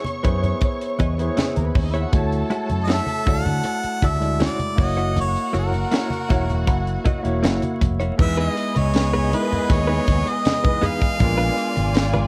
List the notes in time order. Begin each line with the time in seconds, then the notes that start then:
Already playing: B3 E4 G#4 C#5 C#6
0.04 muted clean electric guitar stroke, closed hi-hat, high conga
0.23 F#2 B3 E4 G#4 C5 C#5, kick, closed hi-hat, muted conga
0.32 C#5
0.42 muted clean electric guitar stroke, closed hi-hat, low conga
0.61 muted clean electric guitar stroke, kick, closed hi-hat, muted conga
0.81 closed hi-hat
0.99 E2 B3 E4 G#4 D#5, kick, closed hi-hat, muted conga, high conga
1.18 B3 E4 G#4 C5, muted clean electric guitar stroke, closed hi-hat
1.28 C#5
1.37 B3 E4 G#4 C#5, snare, closed hi-hat, muted conga, high conga
1.56 D#2 A#3 A#4, closed hi-hat, high conga
1.65 B3 B4
1.74 D#2 C#4 C#5, muted clean electric guitar stroke, kick, open hi-hat, muted conga, high conga, low conga
1.84 D#4 D#5
1.92 B3 E4 G#4 C#5 E5, closed hi-hat
2.03 F#4 F#5
2.12 D2 A3 E4 F#4 A4 C#5 A5, kick, closed hi-hat, low conga
2.32 closed hi-hat
2.50 G#3 E4 F#4 C#5, closed hi-hat, muted conga
2.69 F#2, closed hi-hat, high conga
2.84 G#3 D#5, closed hi-hat
2.88 E4 F#4 C#5, snare
2.92 E5
3.06 muted clean electric guitar stroke, closed hi-hat, high conga
3.25 D2 G#3 A3 E4 F#4 C#5 D5, kick, closed hi-hat, muted conga
3.30 F#5
3.45 D3, muted clean electric guitar stroke, closed hi-hat, low conga
3.64 muted clean electric guitar stroke, closed hi-hat, muted conga
3.83 muted fingered electric bass stroke, closed hi-hat
4.02 D2 G#3 E4 F#4 D5, kick, closed hi-hat, muted conga, high conga
4.06 E5
4.19 G#3 E4 F#4 D5, muted clean electric guitar stroke, closed hi-hat
4.40 G#3 E4 F#4 C#5, snare, closed hi-hat, muted conga, high conga
4.45 D5
4.59 closed hi-hat, high conga
4.76 F#1 A#3 E4 F#4 C#5 F#5, muted clean electric guitar stroke, kick, open hi-hat, muted conga, high conga, low conga
4.83 D#5
4.97 A#3 E4 F#4 C#5, closed hi-hat
5.16 closed hi-hat, muted conga, low conga
5.21 C#5
5.36 closed hi-hat
5.53 F#1 A#3 E4 F#4 C#5, closed hi-hat, muted conga
5.59 A#4
5.73 closed hi-hat, high conga
5.91 A#3 E4 F#4 C#5, snare, closed hi-hat, muted conga
6.10 closed hi-hat, high conga
6.29 E1 A#3 E4 F#4 C#5, kick, closed hi-hat, muted conga
6.48 muted clean electric guitar stroke, closed hi-hat, low conga
6.67 F#1, muted clean electric guitar stroke, kick, closed hi-hat, muted conga
6.87 closed hi-hat
7.04 A#3 E4 F#4 D#5, muted fingered electric bass stroke, kick, closed hi-hat, muted conga, high conga
7.23 E1 A#3 E4 F#4 C#5, muted clean electric guitar stroke, closed hi-hat
7.43 F#1 A#3 E4 F#4 C#5, snare, closed hi-hat, muted conga, high conga
7.62 closed hi-hat, high conga
7.81 F1, muted clean electric guitar stroke, kick, closed hi-hat, high conga, low conga
8.00 A#3 E4 F#4 C#5, closed hi-hat
8.18 E2 G#3 B3 D#4 E4 G#4 B4 D#5 E5, muted clean electric guitar stroke, kick, crash, low conga
8.37 B3 D#4 G#4 B4 D#5, closed hi-hat
8.56 muted clean electric guitar stroke, closed hi-hat
8.75 C#2 C#5, muted clean electric guitar stroke, closed hi-hat, high conga
8.94 muted clean electric guitar stroke, snare, closed hi-hat, muted conga
9.13 B3 D#4 G#4 B4, high conga
9.31 G#3 B3 D#4 E4, muted clean electric guitar stroke, closed hi-hat, muted conga
9.35 A#4 B4
9.42 B4
9.51 muted clean electric guitar stroke, closed hi-hat, low conga
9.69 D#2 C#5, muted clean electric guitar stroke, kick, closed hi-hat
9.87 B3 D#4 G#4 B4
10.07 D#2, muted clean electric guitar stroke, kick, closed hi-hat, muted conga, high conga
10.26 D#5, muted clean electric guitar stroke, closed hi-hat
10.45 snare, closed hi-hat, muted conga, high conga
10.63 E3 G#3 B3 D#4 B4, muted clean electric guitar stroke, kick, high conga
10.81 B3 D#4 G#4 B4, closed hi-hat, low conga
10.86 F5
11.01 muted clean electric guitar stroke, kick, closed hi-hat
11.19 A#1 G#3 B3 D4 F4 A#4 D5 G#5, muted clean electric guitar stroke, kick, closed hi-hat, muted conga, low conga
11.38 G#3 D4 F4 B4, closed hi-hat
11.57 muted clean electric guitar stroke, closed hi-hat
11.76 G#1, muted clean electric guitar stroke, closed hi-hat, high conga
11.94 muted clean electric guitar stroke, snare, closed hi-hat
12.14 G#3 D4 F4 B4, closed hi-hat, high conga